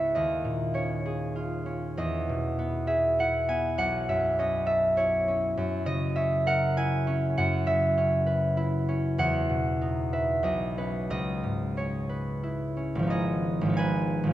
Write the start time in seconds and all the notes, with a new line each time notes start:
Already playing: C#2 G#2 B3 E4 G#4 C#5 E5
0.15 D#2 D#5
0.45 A#2
0.74 C#4 C#5
1.06 G#4
1.36 F4
1.66 C#4
1.97 E2 D#5
2.29 B2
2.59 B3
2.87 G#4 E5
3.19 E4 F#5
3.48 B3 G#5
3.78 B1 F#5
4.09 F#2 E5
4.39 C#4 D#5
4.66 A4 E5
4.97 E4 C#5
5.28 C#4
5.57 F#2
5.86 C#3 D#5
6.16 C#4 E5
6.46 A#4 F#5
6.77 E4 G#5
7.07 C#4
7.38 F#2 F#5
7.66 C#3 E5
7.97 C#4
8.26 B4
8.57 E4
8.88 C#4
9.18 E2 F#5
9.50 B2
9.81 D#4
10.13 B4 E5
10.43 B1 D#5
10.78 C#4 B4
11.10 C#2 D#5
11.44 G#2
11.77 C#4 C#5
12.09 B4
12.43 E4
12.77 C#4
12.95 G#1 F3
13.03 B3
13.07 D#4 D#5
13.11 G#4
13.61 G#1
13.66 F3 B3
13.73 D#4 G#5
13.78 B4
14.23 G#1 F3